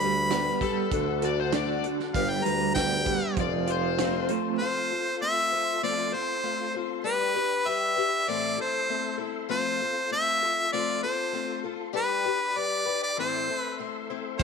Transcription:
Already playing: tonewheel organ G3 D4 B4, harmonica B5
0.00 tuba D2, clean electric guitar G3, twelve-string acoustic guitar D4 G4 B4, closed hi-hat
0.31 twelve-string acoustic guitar G3 D4 G4 B4, clean electric guitar B3, snare, closed hi-hat
0.61 clean electric guitar G3, twelve-string acoustic guitar D4 G4 B4, electric slide guitar A4, kick, closed hi-hat
0.89 tuba D2, clean electric guitar D3, twelve-string acoustic guitar A3 D4, tonewheel organ D4 A4 F#5, kick, closed hi-hat
0.93 twelve-string acoustic guitar F#4 A4
1.22 twelve-string acoustic guitar D4 F#4 A4, clean electric guitar F#4, electric slide guitar D5, closed hi-hat
1.40 electric slide guitar C5
1.52 twelve-string acoustic guitar D3 A3 D4 F#4 A4, clean electric guitar D4, electric slide guitar D5, snare, closed hi-hat
1.84 clean electric guitar D3, twelve-string acoustic guitar D4 F#4 A4, closed hi-hat
2.00 snare
2.12 tuba G1, tonewheel organ G3 B4, twelve-string acoustic guitar G3 D4 G4 B4, clean electric guitar G3, harmonica F5, kick, closed hi-hat
2.30 harmonica G5
2.43 tuba D2, clean electric guitar G3, twelve-string acoustic guitar D4 G4 B4, harmonica A#5, closed hi-hat
2.74 twelve-string acoustic guitar G3 D4 G4 B4, clean electric guitar B3, harmonica G5, kick, snare, closed hi-hat
3.06 clean electric guitar G3, twelve-string acoustic guitar D4 G4 B4, kick, closed hi-hat
3.36 tuba F1, tonewheel organ F3 C4 A4, clean electric guitar F3, twelve-string acoustic guitar A3 C4 F4, kick, closed hi-hat
3.40 twelve-string acoustic guitar C5, electric slide guitar D5
3.67 twelve-string acoustic guitar C4 F4 C5, clean electric guitar F4, closed hi-hat
3.72 electric slide guitar C5
3.99 twelve-string acoustic guitar F3 A3 C4 F4 C5, clean electric guitar C4, snare, closed hi-hat
4.28 clean electric guitar A3, twelve-string acoustic guitar C4 F4 C5, closed hi-hat
4.58 twelve-string acoustic guitar F3 A3 C4 F4 C5, tonewheel organ F4 A4 C6, harmonica C5
4.91 twelve-string acoustic guitar C4 F4 C5
5.21 twelve-string acoustic guitar A3 C4 F4 C5, harmonica E5
5.52 twelve-string acoustic guitar C4 F4 C5
5.83 twelve-string acoustic guitar F3 A3 C4 F4 C5, harmonica D5
6.12 twelve-string acoustic guitar C4 F4 C5, harmonica C5
6.43 twelve-string acoustic guitar A3 C4 F4 C5
6.75 twelve-string acoustic guitar C4 F4 C5
7.04 twelve-string acoustic guitar G3 D4 G4 B4, tonewheel organ G4 D5 B5, harmonica B4
7.34 twelve-string acoustic guitar D4 G4 B4
7.66 twelve-string acoustic guitar G3 D4 G4 B4, harmonica E5
7.96 twelve-string acoustic guitar D4 G4 B4
8.27 twelve-string acoustic guitar A2 E3 A3 C4 E4 A4, tonewheel organ A4 E5 C6, harmonica D5
8.58 twelve-string acoustic guitar A3 C4 E4 A4, harmonica C5
8.89 twelve-string acoustic guitar A3 C4 E4 A4
9.18 twelve-string acoustic guitar A3 C4 E4 A4
9.49 twelve-string acoustic guitar F3 A3 C4 F4 A4, tonewheel organ F4, harmonica C5
9.81 twelve-string acoustic guitar C4 F4 A4
10.11 twelve-string acoustic guitar A3 C4 F4 A4, harmonica E5
10.42 twelve-string acoustic guitar C4 F4 A4
10.72 twelve-string acoustic guitar F3 A3 C4 F4 A4, harmonica D5
11.03 twelve-string acoustic guitar C4 F4 A4, harmonica C5
11.33 twelve-string acoustic guitar A3 C4 F4 A4
11.64 twelve-string acoustic guitar C4 F4 A4
11.93 twelve-string acoustic guitar G3 D4 G4 B4, tonewheel organ G4 D5 B5, harmonica B4
12.25 twelve-string acoustic guitar D4 G4 B4
12.56 twelve-string acoustic guitar G3 D4 G4 B4, harmonica D5
12.86 twelve-string acoustic guitar D4 G4 B4
13.03 harmonica D5
13.16 twelve-string acoustic guitar A2 E3 A3 C4 E4 C5, tonewheel organ A4 E5 C6, harmonica C5
13.48 twelve-string acoustic guitar A3 C4 E4 C5
13.60 harmonica B4
13.79 twelve-string acoustic guitar A3 C4 E4 C5
14.10 twelve-string acoustic guitar A3 C4 E4 C5
14.38 twelve-string acoustic guitar F3 A3 C4, tonewheel organ F4, harmonica C5, kick, crash

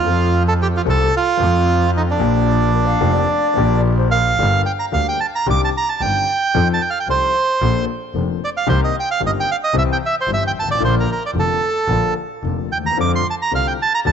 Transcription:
Already playing: bandoneon F4
0.03 double bass F2, grand piano F2 F3 A3 C4
0.07 grand piano A4
0.48 bandoneon A4
0.62 bandoneon G4
0.77 bandoneon F4
0.85 double bass C2, grand piano C2 C3 F3 A3 C4 A4
0.90 bandoneon A4
1.17 bandoneon F4
1.37 double bass F2, grand piano F2 F3 A3 C4 A4
1.97 bandoneon D#4
2.11 bandoneon D4
2.17 grand piano A#1 A#2 F3 A#3 D4, double bass A#1
2.21 grand piano G4
2.73 flute A#4
2.86 flute F5
3.00 double bass F1, grand piano F1 F2 F3 A#3 D4 G4
3.13 flute D5
3.54 double bass A#1, grand piano A#1 A#2 F3 A#3 D4
3.58 grand piano G4
3.97 flute C5
4.11 flute A#4, bandoneon F5
4.38 double bass G1, grand piano G1 G2 D3 G3 A#3 G4
4.66 bandoneon G5
4.79 bandoneon A#5
4.92 grand piano D2 D3 G3 A#3 G4, double bass D2, bandoneon F5
5.09 bandoneon G5
5.20 bandoneon A5
5.35 bandoneon A#5
5.46 double bass C2, grand piano C2 C3 D#3 C4 D4 G4
5.50 bandoneon D6
5.65 bandoneon A5
5.77 bandoneon A#5
5.89 bandoneon A5
6.00 double bass G1, grand piano G1 G2 D#3 C4 D4 G4, bandoneon G5
6.54 double bass F2, grand piano F2 F3 C4 D#4 A4
6.74 bandoneon A5
6.81 bandoneon G5
6.90 bandoneon F5
7.00 bandoneon G5
7.07 double bass C2, grand piano C2 C3 F3 C4 D#4 A4, bandoneon C5
7.61 double bass A#1, grand piano A#1 A#2 F3 A#3 D4 A4
8.14 double bass F1, grand piano F1 F2 F3 A#3 D4 A4
8.44 bandoneon D5
8.57 bandoneon F5
8.67 grand piano C2 C3 D#3 A#3 C4 G4, double bass C2, bandoneon C5
8.84 bandoneon D#5
9.00 bandoneon G5
9.11 bandoneon F5
9.20 grand piano G1 G2 D#3 A#3 C4 G4, double bass G1
9.27 bandoneon D#5
9.40 bandoneon G5
9.51 bandoneon F5
9.64 bandoneon D#5
9.73 double bass C2, grand piano C2 C3 E3 G3 C4 G4
9.78 bandoneon E5
9.93 bandoneon G5
10.06 bandoneon E5
10.21 bandoneon C5
10.27 double bass G1, grand piano G1 G2 E3 G3 C4 G4
10.34 bandoneon E5
10.47 bandoneon G5
10.53 double bass G#1
10.60 grand piano G1, bandoneon A5
10.68 grand piano G#1, bandoneon D5
10.75 grand piano A1
10.79 double bass A#1, grand piano A#1 A#2 D3 F3 A#3 F4
10.85 bandoneon C5
11.00 bandoneon A#4
11.12 bandoneon A#4
11.26 bandoneon D5
11.34 double bass F1, grand piano F1 F2 D3 F3 A#3 F4
11.39 bandoneon A4
11.88 double bass A#1, grand piano A#1 A#2 D3 F3 A#3 F4
12.43 double bass F1, grand piano F1 F2 D3 F3 A#3 F4
12.69 double bass D#2, bandoneon G5
12.78 grand piano D2
12.84 grand piano D#2, bandoneon A#5
12.91 grand piano E2
12.97 double bass F2, grand piano F2 D3 F3 A3 C4 F4
13.01 bandoneon D6
13.16 bandoneon C6
13.30 bandoneon A5
13.42 bandoneon A#5
13.51 grand piano C2 C3 D3 A3 C4 F4, double bass C2, bandoneon F5
13.67 bandoneon G5
13.82 bandoneon A5
13.95 bandoneon A#5
14.05 double bass D2, grand piano D2 D3 F#3 A3 F#4, bandoneon A5

